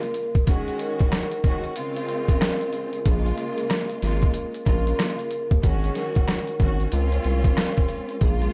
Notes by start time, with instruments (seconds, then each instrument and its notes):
Already playing: string section C#3 G#3 A#3 F4, vibraphone A#4
0.03 closed hi-hat
0.14 closed hi-hat
0.35 kick, closed hi-hat
0.47 string section D#3 G#3 C#4 F#4, vibraphone G#4, kick, closed hi-hat
0.68 closed hi-hat
0.79 vibraphone A#4, closed hi-hat
0.99 kick, closed hi-hat
1.12 cross-stick, snare, closed hi-hat
1.32 closed hi-hat
1.44 string section D#3 G#3 C#4 F#4, kick, closed hi-hat
1.64 closed hi-hat
1.76 string section C#3 G#3 C4 F4, closed hi-hat
1.96 closed hi-hat
2.08 vibraphone A#4, closed hi-hat
2.28 kick, closed hi-hat
2.41 cross-stick, snare, closed hi-hat
2.61 closed hi-hat
2.73 closed hi-hat
2.93 closed hi-hat
3.05 analog synth bass A#1, string section C#3 G#3 A#3 F4, vibraphone G#4, kick, closed hi-hat
3.26 closed hi-hat
3.37 vibraphone A#4, closed hi-hat
3.58 closed hi-hat
3.70 cross-stick, snare, closed hi-hat
3.90 closed hi-hat
4.02 analog synth bass G#1, string section C#3 G#3 A#3 F4, snare, closed hi-hat
4.22 kick, closed hi-hat
4.34 closed hi-hat
4.54 closed hi-hat
4.66 analog synth bass A#1, string section C#3 G#3 A#3 F4, vibraphone A#4, kick, closed hi-hat
4.87 closed hi-hat
4.99 cross-stick, snare, closed hi-hat
5.19 closed hi-hat
5.31 closed hi-hat
5.51 analog synth bass D#2, kick, closed hi-hat
5.63 analog synth bass G#1, string section D#3 G#3 C#4 F#4, vibraphone G#4, kick, closed hi-hat
5.84 closed hi-hat
5.95 vibraphone A#4, snare, closed hi-hat
6.15 kick, closed hi-hat
6.28 cross-stick, snare, closed hi-hat
6.47 closed hi-hat
6.60 analog synth bass G#1, string section D#3 G#3 C#4 F#4, kick, closed hi-hat
6.80 closed hi-hat
6.92 analog synth bass C#2, string section G#3 C4 C#4 F4, closed hi-hat
7.12 closed hi-hat
7.24 analog synth bass C2, vibraphone A#4, closed hi-hat
7.44 kick, closed hi-hat
7.57 cross-stick, snare, closed hi-hat
7.77 kick, closed hi-hat
7.89 closed hi-hat
8.09 closed hi-hat
8.21 analog synth bass A#1, string section C#3 G#3 A#3 F4, vibraphone G#4, kick, closed hi-hat
8.42 closed hi-hat